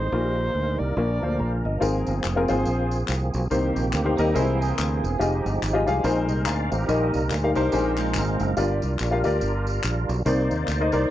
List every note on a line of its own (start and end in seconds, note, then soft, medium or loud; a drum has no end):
0.00 0.11 G#3 medium
0.00 0.11 C4 medium
0.00 0.95 D#4 medium
0.00 0.11 C5 medium
0.00 0.80 C5 loud
0.12 0.48 A#1 loud
0.12 0.76 A#2 medium
0.12 0.96 D#3 medium
0.12 0.96 G3 medium
0.12 0.57 A#3 medium
0.12 0.96 A#3 medium
0.12 0.95 A#3 medium
0.12 0.95 D#4 medium
0.12 0.57 D#4 medium
0.12 0.18 F4 soft
0.12 0.96 A#4 medium
0.12 0.57 A#4 medium
0.18 0.60 G4 medium
0.55 0.76 D2 medium
0.79 0.94 C2 medium
0.79 1.64 D5 loud
0.97 1.18 A#1 loud
0.97 1.61 A#2 medium
0.97 1.81 D3 medium
0.97 1.81 F3 medium
0.97 1.17 A#3 medium
0.97 1.81 A#3 medium
0.97 1.04 C#4 soft
0.97 1.81 D4 medium
0.97 1.18 D4 medium
0.97 1.18 F4 medium
0.97 1.18 A#4 medium
0.97 1.81 A#4 medium
1.03 1.83 D4 medium
1.22 1.41 D2 medium
1.22 1.54 A#3 medium
1.22 1.54 D4 medium
1.22 1.54 F4 medium
1.22 1.54 C5 medium
1.39 1.61 A#1 medium
1.39 1.63 A#5 medium
1.65 1.79 G1 medium
1.65 1.81 D#5 medium
1.80 2.03 G#1 loud
1.80 2.45 G#2 medium
1.80 3.48 F3 medium
1.80 3.48 A#3 medium
1.80 2.12 C4 medium
1.80 3.48 C4 medium
1.80 2.12 F4 medium
1.80 2.12 G#4 medium
1.80 3.48 G#4 medium
1.80 2.12 A#4 medium
1.80 tambourine medium
2.07 2.22 G1 medium
2.07 tambourine soft
2.24 2.46 F1 medium
2.24 clap medium
2.24 tambourine medium
2.36 2.43 C4 medium
2.36 2.43 F4 medium
2.36 2.43 G#4 medium
2.36 2.44 A#4 medium
2.48 2.64 G#1 medium
2.48 2.93 C4 medium
2.48 2.93 F4 medium
2.48 2.93 G#4 medium
2.48 2.93 C5 loud
2.48 tambourine soft
2.65 3.03 A#1 loud
2.65 tambourine medium
2.91 tambourine medium
3.08 3.30 C2 medium
3.08 clap loud
3.08 tambourine loud
3.34 3.49 B1 medium
3.34 tambourine soft
3.50 3.73 C2 medium
3.50 4.15 C3 medium
3.50 4.34 D#3 medium
3.50 4.34 A#3 medium
3.50 4.35 C4 medium
3.50 3.81 D#4 medium
3.50 3.82 G4 medium
3.50 4.34 G4 medium
3.50 3.81 A#4 medium
3.50 3.82 C5 medium
3.50 tambourine medium
3.76 3.91 A#1 medium
3.76 tambourine medium
3.93 4.15 D2 loud
3.93 clap medium
3.93 tambourine medium
4.04 4.12 D#4 medium
4.04 4.12 G4 medium
4.04 4.12 A#4 medium
4.04 4.12 C5 medium
4.17 4.33 D#2 medium
4.17 4.34 G3 medium
4.17 4.34 D#4 medium
4.17 4.32 D#4 loud
4.17 4.36 G4 medium
4.17 4.33 A#4 medium
4.17 4.36 D#5 loud
4.17 tambourine soft
4.34 4.71 C2 loud
4.34 4.99 C3 medium
4.34 5.18 E3 medium
4.34 4.59 G#3 medium
4.34 5.18 A#3 medium
4.34 5.19 C4 medium
4.34 4.41 D#4 medium
4.34 4.59 E4 medium
4.34 5.06 G#4 medium
4.34 5.18 G#4 medium
4.34 5.06 A#4 medium
4.34 5.06 C5 loud
4.34 tambourine medium
4.39 5.08 E4 medium
4.61 5.18 C4 medium
4.61 5.17 G#4 medium
4.61 tambourine medium
4.79 5.00 D2 medium
4.79 clap loud
4.79 tambourine loud
5.04 5.18 E1 loud
5.04 tambourine medium
5.19 5.42 F1 loud
5.19 6.02 F3 medium
5.19 5.25 G3 medium
5.19 6.02 D#4 medium
5.19 5.50 F4 medium
5.19 6.02 G4 medium
5.19 5.50 G4 medium
5.19 5.51 G#4 medium
5.19 5.51 D#5 medium
5.19 tambourine medium
5.24 6.02 G#3 medium
5.46 5.60 G1 medium
5.46 tambourine medium
5.62 5.84 G#1 medium
5.62 clap medium
5.62 tambourine medium
5.73 5.81 F4 medium
5.73 5.81 G4 medium
5.73 5.81 G#4 medium
5.73 5.82 D#5 medium
5.86 6.02 C2 medium
5.86 6.04 F4 medium
5.86 6.04 G4 medium
5.86 6.02 G#4 medium
5.86 6.05 F5 loud
5.86 tambourine soft
6.03 6.29 A#1 loud
6.03 6.68 A#2 medium
6.03 6.86 G#3 medium
6.03 6.87 C4 medium
6.03 6.85 D#4 medium
6.03 6.75 D#4 medium
6.03 6.75 G#4 medium
6.03 6.45 A#4 medium
6.03 6.75 A#4 medium
6.03 6.47 C5 loud
6.03 tambourine medium
6.29 6.44 C2 medium
6.29 tambourine medium
6.46 6.68 D2 medium
6.46 6.71 D5 medium
6.46 6.70 F5 medium
6.46 6.70 A#5 medium
6.46 clap loud
6.46 tambourine loud
6.71 6.86 A1 loud
6.71 7.12 G4 medium
6.71 6.85 A#4 medium
6.71 7.12 C5 medium
6.71 7.12 F5 medium
6.71 tambourine medium
6.86 7.10 A#1 loud
6.86 7.52 A#2 medium
6.86 7.70 G3 medium
6.86 7.70 A#3 medium
6.86 7.70 D#4 medium
6.86 7.19 D#4 medium
6.86 7.19 G4 medium
6.86 7.70 A#4 medium
6.86 7.19 A#4 medium
6.86 7.19 D#5 loud
6.86 tambourine medium
7.14 7.29 C2 medium
7.14 tambourine medium
7.30 7.53 D2 medium
7.30 clap medium
7.30 tambourine medium
7.43 7.50 D#4 medium
7.43 7.50 G4 medium
7.43 7.50 A#4 medium
7.43 7.50 F5 medium
7.55 7.71 C2 medium
7.55 7.72 D4 medium
7.55 7.72 D#4 medium
7.55 7.73 G4 medium
7.55 7.71 A#4 medium
7.55 7.72 A#4 medium
7.55 7.72 C5 loud
7.55 tambourine medium
7.72 8.17 A#1 medium
7.72 8.36 A#2 medium
7.72 8.55 G#3 medium
7.72 7.97 A#3 medium
7.72 8.56 C4 medium
7.72 7.79 D4 medium
7.72 8.55 D#4 medium
7.72 7.97 G4 medium
7.72 8.44 G#4 medium
7.72 8.56 A#4 medium
7.72 8.44 A#4 medium
7.72 8.44 C5 loud
7.72 tambourine medium
7.78 8.46 D#4 medium
7.98 8.54 G#3 medium
7.98 8.54 F4 medium
7.98 clap medium
7.98 tambourine medium
8.14 8.37 G#1 medium
8.14 clap loud
8.14 tambourine loud
8.40 8.55 F#1 loud
8.40 tambourine soft
8.57 8.79 G1 loud
8.57 9.21 G2 medium
8.57 10.22 G3 medium
8.57 10.23 D4 medium
8.57 8.88 F4 medium
8.57 10.22 F4 medium
8.57 8.88 G4 medium
8.57 10.22 A#4 medium
8.57 8.88 A#4 medium
8.57 8.88 D5 medium
8.57 tambourine medium
8.82 8.97 C2 medium
8.82 tambourine medium
8.99 9.22 A#1 medium
8.99 clap medium
8.99 tambourine medium
9.11 9.18 F4 medium
9.11 9.19 G4 medium
9.11 9.19 A#4 medium
9.11 9.19 F5 medium
9.24 9.40 D2 medium
9.24 9.68 F4 medium
9.24 9.68 G4 medium
9.24 9.69 A#4 medium
9.24 9.69 D5 loud
9.24 tambourine soft
9.41 9.78 G1 medium
9.41 tambourine medium
9.67 tambourine medium
9.84 10.06 A#1 medium
9.84 clap loud
9.84 tambourine loud
10.09 10.23 B1 medium
10.09 tambourine soft
10.25 10.47 C2 loud
10.25 10.89 C3 medium
10.25 11.10 A#3 medium
10.25 10.56 D#4 medium
10.25 11.10 D#4 medium
10.25 10.56 A#4 medium
10.25 10.56 C5 medium
10.25 11.10 C5 medium
10.25 11.10 D5 medium
10.25 10.57 D5 medium
10.25 tambourine medium
10.51 10.65 D#2 medium
10.51 tambourine medium
10.68 10.90 D2 medium
10.68 clap medium
10.68 tambourine medium
10.80 10.87 D#4 medium
10.80 10.87 A#4 medium
10.80 10.87 C5 medium
10.80 10.88 D#5 medium
10.92 11.08 C2 medium
10.92 11.10 D#4 medium
10.92 11.10 A#4 medium
10.92 11.10 C5 medium
10.92 11.10 D5 loud
10.92 tambourine soft